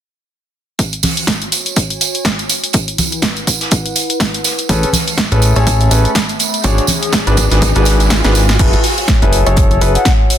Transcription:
0.79 ambient pad F#4, kick, closed hi-hat, tambourine
0.93 closed hi-hat, tambourine
1.03 snare, open hi-hat, tambourine, high conga
1.08 ambient pad C#5
1.17 closed hi-hat, tambourine
1.27 kick, snare, closed hi-hat, tambourine
1.40 ambient pad G#5, closed hi-hat, tambourine
1.52 closed hi-hat, open hi-hat, tambourine
1.66 closed hi-hat, tambourine
1.76 kick, closed hi-hat, tambourine
1.90 closed hi-hat, tambourine
2.01 closed hi-hat, open hi-hat, tambourine
2.15 closed hi-hat, tambourine
2.25 kick, snare, closed hi-hat, tambourine
2.39 closed hi-hat, tambourine
2.49 ambient pad E4, closed hi-hat, open hi-hat, tambourine
2.64 closed hi-hat, tambourine
2.73 ambient pad F#5, kick, closed hi-hat, tambourine
2.81 ambient pad B4
2.88 closed hi-hat, tambourine
2.98 closed hi-hat, open hi-hat, tambourine, high conga
3.12 closed hi-hat, tambourine
3.22 kick, snare, closed hi-hat, tambourine
3.36 closed hi-hat, tambourine
3.47 kick, closed hi-hat, open hi-hat, tambourine
3.61 snare, closed hi-hat, tambourine
3.71 kick, closed hi-hat, tambourine
3.86 closed hi-hat, tambourine
3.96 closed hi-hat, open hi-hat, tambourine
4.10 closed hi-hat, tambourine
4.20 kick, snare, closed hi-hat, tambourine
4.34 closed hi-hat, tambourine
4.44 snare, closed hi-hat, open hi-hat, tambourine
4.58 closed hi-hat, tambourine
4.69 analog synth bass A1, ambient pad A3, upright piano C#4 G#4 A4 B4, kick, closed hi-hat, tambourine, riser
4.83 closed hi-hat, tambourine
4.91 ambient pad E5, snare, open hi-hat, tambourine, high conga
5.04 ambient pad B5, closed hi-hat
5.09 tambourine
5.18 kick, snare, closed hi-hat
5.31 analog synth bass A1, upright piano C#4 G#4 A4 B4, closed hi-hat, tambourine
5.42 closed hi-hat, open hi-hat, tambourine
5.56 analog synth bass A1, upright piano C#4 G#4 A4 C#5, closed hi-hat, tambourine
5.67 kick, closed hi-hat, tambourine
5.80 closed hi-hat, tambourine
5.91 analog synth bass A1, upright piano C#4 G#4 A4 B4, closed hi-hat, open hi-hat, tambourine
6.05 closed hi-hat, tambourine
6.15 kick, snare, closed hi-hat, tambourine
6.29 closed hi-hat, tambourine
6.39 ambient pad G#4, closed hi-hat, open hi-hat, tambourine
6.54 ambient pad D#6, closed hi-hat, tambourine
6.61 analog synth bass G#1, upright piano D4 F#4 G#4 C#5, ambient pad G#5, kick, closed hi-hat, tambourine
6.78 closed hi-hat, tambourine
6.87 closed hi-hat, open hi-hat, tambourine, high conga
7.02 closed hi-hat, tambourine
7.12 kick, snare, closed hi-hat, tambourine
7.27 analog synth bass G#1, upright piano D4 F#4 G#4 B4, closed hi-hat, tambourine
7.37 kick, closed hi-hat, open hi-hat, tambourine
7.51 analog synth bass G#1, upright piano D4 F#4 G#4 B4, snare, closed hi-hat, tambourine
7.62 kick, closed hi-hat, tambourine
7.76 analog synth bass G#1, upright piano D4 F#4 G#4 B4, closed hi-hat, tambourine
7.85 snare, closed hi-hat, open hi-hat, tambourine
8.00 closed hi-hat, tambourine
8.10 kick, snare, closed hi-hat, tambourine
8.24 analog synth bass G#1, upright piano D4 F#4 G#4 B4, snare, closed hi-hat, tambourine
8.35 snare, closed hi-hat, open hi-hat, tambourine
8.49 snare, closed hi-hat, tambourine
8.59 analog synth bass F#1, upright piano E4 G#4 A4 B4, ambient pad F#4, kick, closed hi-hat, crash
8.69 ambient pad C#5
8.73 closed hi-hat
8.84 snare, open hi-hat
8.98 closed hi-hat
9.08 kick, snare, closed hi-hat
9.22 analog synth bass F#1, upright piano E4 G#4 A4 B4, closed hi-hat
9.33 closed hi-hat, open hi-hat
9.46 analog synth bass F#1, upright piano E4 G#4 A4 C#5, closed hi-hat
9.57 kick, closed hi-hat
9.71 closed hi-hat
9.81 analog synth bass F#1, upright piano E4 G#4 A4 B4, closed hi-hat, open hi-hat
9.95 flute F#5, closed hi-hat
10.05 kick, snare, closed hi-hat
10.30 ambient pad E4, closed hi-hat, open hi-hat

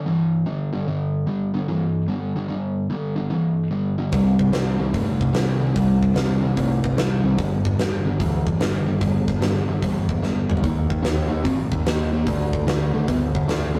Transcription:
0.06 distorted electric guitar G2 E3
0.46 distorted electric guitar G2 D3
0.73 distorted electric guitar G2 D3
0.88 distorted electric guitar G2 D3
1.27 distorted electric guitar G2 D3
1.54 distorted electric guitar G2 D3
1.68 distorted electric guitar G2 E3
2.08 distorted electric guitar G2 D3
2.36 distorted electric guitar G2 D3
2.49 distorted electric guitar G2 D3
2.90 distorted electric guitar G2 D3
3.16 distorted electric guitar G2 D3
3.30 distorted electric guitar G2 E3
3.71 distorted electric guitar G2 D3
3.98 distorted electric guitar G2 D3
4.12 picked electric bass C2, distorted electric guitar C3 G3, kick, open hi-hat
4.39 picked electric bass C2, kick
4.52 picked electric bass C2, distorted electric guitar C3 G3, snare, open hi-hat
4.79 picked electric bass C2, distorted electric guitar C3 G3
4.94 picked electric bass G1, distorted electric guitar C3 A3, kick, open hi-hat
5.21 picked electric bass C2, kick
5.34 picked electric bass C2, distorted electric guitar C3 G3, snare, open hi-hat
5.61 distorted electric guitar C3 G3
5.75 picked electric bass C2, distorted electric guitar C3 G3, kick, open hi-hat
6.03 kick
6.15 picked electric bass C2, distorted electric guitar C3 G3, snare, open hi-hat
6.41 picked electric bass C2, distorted electric guitar C3 G3
6.56 picked electric bass C2, distorted electric guitar C3 A3, kick, open hi-hat
6.84 picked electric bass C2, kick
6.97 picked electric bass C2, distorted electric guitar C3 G3, snare, open hi-hat
7.24 picked electric bass C2, distorted electric guitar C3 G3
7.38 picked electric bass G1, distorted electric guitar G2 D3, kick, open hi-hat
7.65 picked electric bass G1, kick
7.78 picked electric bass G1, distorted electric guitar G2 D3, snare, open hi-hat
8.05 picked electric bass G1, distorted electric guitar G2 D3
8.20 picked electric bass D2, distorted electric guitar G2 E3, kick, open hi-hat
8.47 picked electric bass G1, kick
8.60 picked electric bass G1, distorted electric guitar G2 D3, snare, open hi-hat
8.86 distorted electric guitar G2 D3
9.01 picked electric bass G1, distorted electric guitar G2 D3, kick, open hi-hat
9.28 kick, snare
9.41 picked electric bass G1, distorted electric guitar G2 D3, snare, open hi-hat
9.68 picked electric bass G1, distorted electric guitar G2 D3
9.82 picked electric bass G1, distorted electric guitar G2 E3, kick, open hi-hat
10.09 picked electric bass G1, kick
10.22 picked electric bass G1, distorted electric guitar G2 D3, snare
10.49 picked electric bass G1, distorted electric guitar G2 D3, mid tom
10.57 floor tom
10.63 picked electric bass D#2, distorted electric guitar D#3 A#3, kick, open hi-hat
10.90 picked electric bass D#2, kick
11.02 picked electric bass D#2, distorted electric guitar D#3 A#3, snare, open hi-hat
11.29 picked electric bass D#2, distorted electric guitar D#3 A#3
11.43 picked electric bass A#1, distorted electric guitar D#3 C4, kick, open hi-hat
11.72 picked electric bass D#2, kick
11.85 picked electric bass D#2, distorted electric guitar D#3 A#3, snare, open hi-hat
12.13 distorted electric guitar D#3 A#3
12.26 picked electric bass D2, distorted electric guitar D3 A3, kick, open hi-hat
12.53 kick
12.66 picked electric bass D2, distorted electric guitar D3 A3, snare, open hi-hat
12.93 picked electric bass D2, distorted electric guitar D3 A3
13.07 picked electric bass D2, distorted electric guitar D3 B3, kick, open hi-hat
13.35 picked electric bass D2, kick
13.48 picked electric bass D2, distorted electric guitar D3 A3, snare, open hi-hat
13.75 picked electric bass D2, distorted electric guitar D3 A3

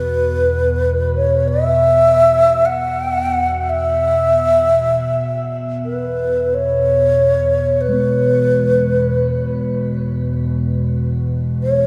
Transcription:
Already playing: ambient pad E2 B2, alto flute B4
1.17 alto flute C#5
1.48 alto flute E5
2.66 alto flute F#5
3.69 alto flute E5
5.85 alto flute B4
6.54 alto flute C#5
7.09 ambient pad E2 B2
7.81 alto flute B4
7.89 singing bowl G#3
7.93 singing bowl B3
11.63 alto flute C#5

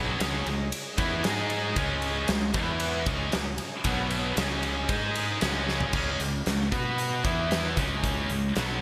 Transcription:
Already playing: fingered electric bass B1, distorted electric guitar B2 F#3 B3, tonewheel organ C#4 G#4 D#5
0.20 fingered electric bass C#2, distorted electric guitar C#3 G#3 C#4, snare, ride
0.46 fingered electric bass C#2, distorted electric guitar C#3 G#3, ride
0.72 ride
0.98 fingered electric bass E2, distorted electric guitar E3 B3 E4, kick, ride
1.23 fingered electric bass G#2, tonewheel organ G#3 D#4, distorted electric guitar G#3 D#4 G#4, snare, ride
1.50 ride
1.76 fingered electric bass C#2, distorted electric guitar C#3 G#3 C#4, tonewheel organ C#4 G#4 D#5, kick, ride
2.02 ride
2.28 fingered electric bass C#2, distorted electric guitar C#3 G#3, snare, ride
2.53 fingered electric bass E2, distorted electric guitar E3 B3 E4, tonewheel organ E4 B4 F#5, kick, ride
2.80 ride
3.05 fingered electric bass C#2, distorted electric guitar C#3 G#3 C#4, tonewheel organ C#4 G#4 D#5, kick, ride
3.32 fingered electric bass C#2, distorted electric guitar C#3 G#3, snare, ride
3.58 ride
3.84 fingered electric bass B1, distorted electric guitar B2 F#3 B3, tonewheel organ B3 F#4 C#5, kick, ride
4.11 ride
4.36 fingered electric bass C#2, distorted electric guitar C#3 G#3 C#4, tonewheel organ C#4 G#4 D#5, snare, ride
4.63 ride
4.89 fingered electric bass G#2, distorted electric guitar G#3 D#4 G#4, tonewheel organ G#3 D#4, kick, ride
5.15 ride
5.41 fingered electric bass C#2, distorted electric guitar C#3 G#3 C#4, tonewheel organ C#4 D#5, snare, ride
5.68 snare
5.81 floor tom
5.93 fingered electric bass C#2, distorted electric guitar C#3 G#3 C#4, kick, crash
6.20 fingered electric bass C#2, distorted electric guitar C#3 G#3, closed hi-hat
6.46 fingered electric bass C#2, distorted electric guitar C#3 G#3, snare, closed hi-hat
6.72 fingered electric bass B2, distorted electric guitar B3 F#4 B4, kick, closed hi-hat
6.98 closed hi-hat
7.24 fingered electric bass E2, distorted electric guitar E3 B3 E4, kick, closed hi-hat
7.51 snare, closed hi-hat
7.77 fingered electric bass C#2, distorted electric guitar C#3 G#3 C#4, kick, closed hi-hat
8.04 kick, closed hi-hat
8.30 fingered electric bass C#2, distorted electric guitar C#3 G#3, closed hi-hat
8.56 fingered electric bass B1, distorted electric guitar B2 F#3 B3, snare, closed hi-hat

